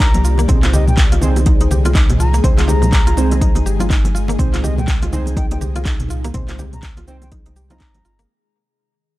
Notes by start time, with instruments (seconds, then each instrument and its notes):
Already playing: ambient pad C3 D#3 A#3 G4 D5, synth stab D4 D#4 A#4 D5, flute A#5
0.00 sub bass C2, synth arpeggio sound D#4, kick, clap, closed hi-hat, muted conga, shaker
0.14 closed hi-hat, low bongo, high conga
0.24 synth arpeggio sound F4, muted conga, shaker
0.38 synth arpeggio sound A#3, closed hi-hat, low bongo, shaker
0.48 sub bass C2, ambient pad G#3 D#4 G#4, synth arpeggio sound C4, synth stab C4 D#4 G#4 C5, kick, closed hi-hat, mid tom, low conga, shaker
0.63 synth arpeggio sound F4, clap, closed hi-hat, low bongo, muted conga
0.73 synth arpeggio sound G4, flute D#5, high bongo, low conga, shaker
0.87 flute G5, mid tom, low bongo, muted conga, high conga, shaker
0.98 kick, clap, closed hi-hat, shaker
1.12 synth arpeggio sound F4, closed hi-hat, low bongo, muted conga
1.22 sub bass C2, synth stab C4 D#4 G#4 C5, high bongo, low conga, shaker
1.36 closed hi-hat, low bongo, muted conga, shaker
1.46 synth arpeggio sound D#4, kick, closed hi-hat, high bongo, high conga, shaker
1.60 synth arpeggio sound D#4, closed hi-hat, low bongo
1.70 sub bass C2, synth arpeggio sound G4, muted conga, high conga, low conga, shaker
1.85 synth arpeggio sound F4, closed hi-hat, low bongo, shaker
1.95 synth arpeggio sound D#4, kick, clap, closed hi-hat, muted conga, high conga, shaker
2.10 closed hi-hat, mid tom, low bongo
2.19 sub bass C2, synth arpeggio sound F4, flute A#5, muted conga, high conga, shaker
2.33 synth arpeggio sound A#3, closed hi-hat, low bongo, shaker
2.44 sub bass C2, synth arpeggio sound C4, synth stab C4 D#4 G#4 C5, kick, closed hi-hat, low conga, shaker
2.58 synth arpeggio sound F4, clap, closed hi-hat, low bongo, muted conga
2.68 synth arpeggio sound G4, flute A#5, high bongo, low conga, shaker
2.82 closed hi-hat, mid tom, low bongo, muted conga, high conga, shaker
2.93 kick, clap, closed hi-hat, shaker
3.06 synth arpeggio sound F4, closed hi-hat, low bongo, muted conga
3.17 sub bass C2, synth stab C4 D#4 G#4 C5, high bongo, shaker
3.31 closed hi-hat, low bongo, muted conga, shaker
3.41 synth arpeggio sound D#4, kick, closed hi-hat, high conga, shaker
3.55 synth arpeggio sound D#4, closed hi-hat, low bongo
3.66 sub bass G1, synth arpeggio sound G4, muted conga, shaker
3.79 synth arpeggio sound F4, closed hi-hat, high bongo, low bongo, high conga, shaker
3.90 synth arpeggio sound D#4, kick, clap, closed hi-hat, muted conga, shaker
4.04 closed hi-hat, low bongo, high conga
4.15 synth arpeggio sound F4, muted conga, shaker
4.28 synth arpeggio sound A#3, closed hi-hat, low bongo, shaker
4.39 sub bass C2, synth stab C4 D#4 G#4 C5, synth arpeggio sound C4, kick, closed hi-hat, mid tom, low conga, shaker
4.54 synth arpeggio sound F4, clap, closed hi-hat, low bongo, muted conga
4.63 synth arpeggio sound G4, flute D#5, high bongo, low conga, shaker
4.78 flute G5, mid tom, low bongo, muted conga, high conga, shaker
4.88 kick, clap, closed hi-hat, shaker
5.02 synth arpeggio sound F4, closed hi-hat, low bongo, muted conga
5.12 sub bass C2, synth stab C4 D#4 G#4 C5, high bongo, low conga, shaker
5.26 closed hi-hat, low bongo, muted conga, shaker
5.36 synth arpeggio sound D#4, flute G5, kick, closed hi-hat, high bongo, high conga, shaker
5.51 synth arpeggio sound D#4, flute G5, closed hi-hat, low bongo
5.61 sub bass C2, synth arpeggio sound G4, muted conga, high conga, low conga, shaker
5.76 synth arpeggio sound F4, closed hi-hat, low bongo, shaker
5.85 synth arpeggio sound D#4, kick, clap, closed hi-hat, muted conga, high conga, shaker
6.00 closed hi-hat, mid tom, low bongo
6.08 sub bass C2, synth arpeggio sound F4, muted conga, high conga, shaker
6.24 synth arpeggio sound A#3, closed hi-hat, low bongo, shaker
6.34 sub bass C2, synth stab C4 D#4 G#4 C5, synth arpeggio sound C4, kick, closed hi-hat, mid tom, low conga, shaker
6.48 synth arpeggio sound F4, clap, closed hi-hat, low bongo, muted conga
6.59 synth arpeggio sound G4, high bongo, low conga, shaker
6.73 flute A#5, closed hi-hat, mid tom, low bongo, muted conga, high conga, shaker
6.83 kick, clap, closed hi-hat, shaker
6.97 synth arpeggio sound F4, closed hi-hat, low bongo, muted conga
7.07 sub bass C2, synth stab C4 D#4 G#4 C5, flute G5, high bongo, shaker
7.22 flute G5, closed hi-hat, low bongo, muted conga, shaker
7.32 synth arpeggio sound D#4, kick, closed hi-hat, high conga, shaker
7.46 synth arpeggio sound D#4, closed hi-hat, low bongo
7.56 synth arpeggio sound G4, muted conga, shaker
7.70 synth stab C4 D#4 G#4 D#5, synth arpeggio sound F4, flute A#5, closed hi-hat, high bongo, low bongo, high conga, shaker
7.80 sub bass G1, synth arpeggio sound D#4, kick, clap, closed hi-hat, shaker
7.94 closed hi-hat, low bongo, high conga
8.05 sub bass G1, synth arpeggio sound F4, muted conga, shaker
8.19 synth arpeggio sound A#3, closed hi-hat, low bongo, shaker